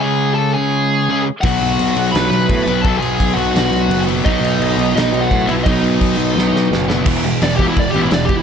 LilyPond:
<<
  \new Staff \with { instrumentName = "Lead electric guitar" } { \time 4/4 \key b \mixolydian \tempo 4 = 171 <gis' gis''>4 <a' a''>8 <gis' gis''>2 r8 | <fis' fis''>2 <b' b''>2 | <a' a''>8 <gis' gis''>4 <fis' fis''>2 r8 | <dis' dis''>2 <dis' dis''>8. <fis' fis''>8. <e' e''>8 |
<dis' dis''>2. r4 | \key e \mixolydian r4 \tuplet 3/2 { d''8 g'8 e'8 d''8 g'8 e'8 d''8 g'8 e'8 } | }
  \new Staff \with { instrumentName = "Distorted electric guitar" } { \time 4/4 \key b \mixolydian r1 | r1 | r1 | r1 |
r1 | \key e \mixolydian <e gis b e'>1 | }
  \new Staff \with { instrumentName = "Distorted electric guitar" } { \clef bass \time 4/4 \key b \mixolydian <cis gis cis'>4. <cis gis cis'>2 r8 | <b, fis b>2 <b, fis b>2 | <b, fis b>2 <b, fis b>2 | <b, fis b>2 <b, fis b>2 |
<b, fis b>2 <b, fis b>2 | \key e \mixolydian <e, b, e>8 <e, b,>8 <e, b,>8 <e, b, e>8 <e, b,>8 <e, b, e>8 <e, b,>8 <e, b,>8 | }
  \new Staff \with { instrumentName = "Overdriven electric guitar" } { \clef bass \time 4/4 \key b \mixolydian <cis gis cis'>2. <cis gis cis'>8 r8 | <b, fis b>2.~ <b, fis b>8 <b, fis b>8 | <b, fis b>2.~ <b, fis b>8 <b, fis b>8 | <b, fis b>2.~ <b, fis b>8 <b, fis b>8 |
<b, fis b>2.~ <b, fis b>8 <b, fis b>8 | \key e \mixolydian <e, b, e>8 <e, b,>8 <e, b,>8 <e, b, e>8 <e, b,>8 <e, b, e>8 <e, b,>8 <e, b,>8 | }
  \new Staff \with { instrumentName = "Picked electric bass" } { \clef bass \time 4/4 \key b \mixolydian r1 | b,,8 b,,8 b,,8 b,,8 b,,8 b,,8 a,8 b,,8 | b,,8 b,,8 b,,8 b,,8 b,,8 b,,8 fis,,4 | b,,8 b,,8 b,,8 b,,8 b,,8 b,,8 a,8 b,,8 |
b,,8 b,,8 b,,8 b,,8 b,,8 b,,8 fis,,4 | \key e \mixolydian e,,4 e,,4 e,,8 a,,8 e,,4 | }
  \new DrumStaff \with { instrumentName = "Drums" } \drummode { \time 4/4 r4 r4 r4 r4 | <cymc bd>8 cymc8 cymc8 cymc8 <cymc sn>8 cymc8 <cymc bd>8 cymc8 | <cymc bd>8 cymc8 <cymc bd>8 cymc8 <cymc sn>8 cymc8 cymc8 cymc8 | <cymc bd>8 cymc8 cymc8 cymc8 <cymc sn>8 cymc8 <cymc bd>8 cymc8 |
<cymc bd>8 cymc8 <cymc bd>8 cymc8 sn8 sn8 sn8 sn8 | <cymc bd>8 cymc8 <cymc sn>8 <cymc bd>8 <cymc bd>8 cymc8 <cymc sn>8 <cymc bd>8 | }
>>